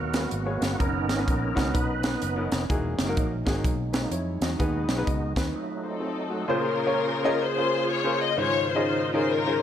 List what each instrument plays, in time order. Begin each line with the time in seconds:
Already playing: fingered electric bass D#2, french horn section B2 F#3 G#3, tonewheel organ A#3 B3 F#4 A#4
0.13 upright piano B3 F#4 G#4 B4, snare, closed hi-hat
0.31 fingered electric bass G#1, tonewheel organ A#3 B3 F#4, closed hi-hat
0.45 upright piano B3 F#4 G#4 C#5
0.61 fingered electric bass G1, snare, closed hi-hat
0.78 fingered electric bass F#1, french horn section D#3 C#4, upright piano B3 C#4 D#4 A#4, tonewheel organ B3 C#4 D#4 A#4, kick, closed hi-hat
1.09 fingered electric bass G#1, snare, closed hi-hat
1.17 upright piano B3 C#4 D#4 B4
1.28 fingered electric bass A#1, kick, closed hi-hat
1.55 fingered electric bass C#2, upright piano B3 C#4 D#4 F#4, kick, snare, closed hi-hat
1.74 fingered electric bass B1, tonewheel organ D#4 B4, kick, closed hi-hat
2.02 upright piano B3 C#4 D#4 B4, snare, closed hi-hat
2.22 fingered electric bass F#1, closed hi-hat
2.36 upright piano B3 C#4 D#4 A#4
2.52 fingered electric bass F1, snare, closed hi-hat
2.69 fingered electric bass E1, upright piano E3 A#3 D#4 F#4 G#4, french horn section F#3 G#3 D#4, kick, closed hi-hat
2.98 fingered electric bass F#1, tonewheel organ F#3 G#3 A#3 D#4, snare, closed hi-hat
3.07 upright piano A#3 D#4 F#4 A#4
3.17 fingered electric bass A#1, kick, closed hi-hat
3.45 fingered electric bass G#1, upright piano A#3 D#4 F#4 G#4, kick, snare, closed hi-hat
3.64 fingered electric bass B1, kick, closed hi-hat
3.93 tonewheel organ F#3 G#3 A#3 D#4, upright piano D#4 B4, snare, closed hi-hat
4.11 fingered electric bass F2, upright piano E4 C#5, closed hi-hat
4.41 fingered electric bass E2, upright piano F#4 D#5, snare, closed hi-hat
4.59 fingered electric bass D#2, upright piano D#3 B3 D#4 G#4 B4, french horn section D#3 B3, tonewheel organ G#3 B3 D#4, kick, closed hi-hat
4.88 fingered electric bass B1, snare, closed hi-hat
4.96 upright piano B3 D#4 G#4 B4
5.07 fingered electric bass C#2, upright piano F#4 D#5, kick, closed hi-hat
5.36 fingered electric bass D#2, upright piano D#4 B4, kick, snare, closed hi-hat
5.54 tonewheel organ F#3 A3 D#4, french horn section F#3 A3 F4
5.83 string section C4 D#4 A4, upright piano D#4 C5
6.00 upright piano C4 A4
6.30 upright piano A3 F#4
6.48 upright piano A#2 C#4 F4 G#4 A#4 C5, tonewheel organ C#3 A#3 G#4 C5, string section C#4 F4
6.52 string section A#4
6.86 upright piano C#4 F4 G#4 A#4 C#5
7.24 upright piano C#4 F4 G#4 A#4 D#5
7.45 string section F4 G#4 C5
7.56 upright piano C#4 F4 G#4 A#4 C5
7.91 string section C#5
8.04 upright piano C#4 F4 G#4 A#4 C5
8.21 string section D#5
8.36 tonewheel organ G#2 D#3 F4 C5, upright piano G#2 C#4 D#4 F4 G#4 C5, string section F4 C#5
8.68 string section D#4 F4 C5
8.75 upright piano C#4 D#4 F4 G#4 D#5
9.13 upright piano C#4 D#4 F4 G#4 A#4, string section C5
9.32 string section C#4 F4 A#4
9.45 upright piano C#4 D#4 F4 G#4 C5